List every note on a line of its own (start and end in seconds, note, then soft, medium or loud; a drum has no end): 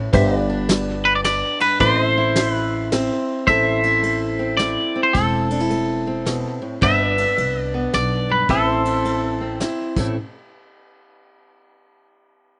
0.00 0.12 A2 medium
0.00 0.11 E4 medium
0.12 1.41 G1 loud
0.12 0.65 G2 medium
0.12 1.77 B3 medium
0.12 1.77 D4 medium
0.12 1.77 G4 medium
0.12 1.77 B4 medium
0.12 0.34 C5 medium
0.12 0.40 E5 medium
0.12 kick loud
0.12 ride medium
0.34 1.79 B4 medium
0.40 1.80 D5 medium
0.50 1.81 D4 medium
0.69 1.21 G3 medium
0.69 snare medium
0.69 ride medium
1.05 1.14 B4 loud
1.15 1.20 D5 loud
1.24 1.61 D5 loud
1.24 snare medium
1.24 ride medium
1.60 1.80 G2 medium
1.60 1.80 B4 medium
1.60 ride medium
1.79 3.08 A1 loud
1.79 2.32 A2 medium
1.79 3.44 C4 medium
1.79 3.44 E4 medium
1.79 3.44 A4 medium
1.79 2.00 B4 medium
1.79 3.44 C5 medium
1.79 2.52 C5 loud
1.79 2.06 D5 medium
1.79 kick loud
1.79 ride medium
2.00 3.46 C5 medium
2.06 3.46 E5 medium
2.18 3.46 E4 medium
2.36 2.88 A3 medium
2.36 snare medium
2.36 ride medium
2.52 2.88 B4 loud
2.92 3.44 E3 medium
2.92 3.46 C4 medium
2.92 snare medium
2.92 ride medium
3.47 4.75 A1 medium
3.47 3.99 A2 medium
3.47 4.39 C4 medium
3.47 3.84 E4 medium
3.47 5.13 A4 medium
3.47 6.78 C5 medium
3.47 4.55 E5 loud
3.47 6.79 E5 medium
3.47 kick loud
3.47 ride medium
3.83 4.59 E4 medium
3.83 ride medium
4.03 4.55 A3 medium
4.03 ride medium
4.39 4.94 C4 medium
4.57 5.11 A3 medium
4.57 5.13 E4 medium
4.57 5.03 D5 medium
4.57 snare medium
4.57 ride medium
4.96 5.13 C4 medium
5.03 5.14 C5 medium
5.13 6.43 E1 medium
5.13 5.66 A2 medium
5.13 6.06 C4 medium
5.13 5.50 E4 medium
5.13 6.57 A4 medium
5.13 kick loud
5.13 ride medium
5.50 5.60 D4 medium
5.50 ride medium
5.60 6.82 E4 medium
5.70 6.22 A3 medium
5.70 ride medium
6.07 6.80 C4 medium
6.26 6.61 B2 medium
6.26 snare medium
6.26 ride medium
6.62 6.81 A2 medium
6.81 7.25 G1 medium
6.81 7.33 G2 medium
6.81 7.73 B3 medium
6.81 7.17 D4 medium
6.81 8.48 B4 medium
6.81 7.03 C5 medium
6.81 7.62 E5 loud
6.81 7.09 E5 medium
6.81 kick loud
6.81 ride medium
7.03 8.48 B4 medium
7.09 8.49 D5 medium
7.18 8.49 D4 medium
7.18 ride medium
7.38 7.85 C2 medium
7.38 7.89 G3 medium
7.38 ride medium
7.62 7.94 D5 loud
7.74 8.47 B3 medium
7.93 8.41 B1 medium
7.93 8.32 D5 medium
7.93 snare medium
7.93 ride medium
8.29 8.49 G2 medium
8.29 8.50 B4 medium
8.49 9.62 A1 medium
8.49 9.01 A2 medium
8.49 9.40 C4 medium
8.49 8.84 E4 medium
8.49 9.57 A4 medium
8.49 8.68 B4 medium
8.49 9.95 E5 medium
8.49 kick loud
8.49 ride medium
8.68 9.95 C5 medium
8.85 9.60 E4 medium
8.85 ride medium
9.05 9.56 A3 medium
9.05 ride medium
9.41 9.96 C4 medium
9.60 9.96 A3 medium
9.60 9.97 E4 medium
9.60 snare medium
9.60 ride medium
9.96 10.15 A1 medium
9.96 10.14 A2 medium
9.96 10.15 A3 medium
9.96 10.15 C4 soft
9.96 10.15 E4 medium
9.96 10.16 A4 medium
9.96 kick loud
9.96 crash medium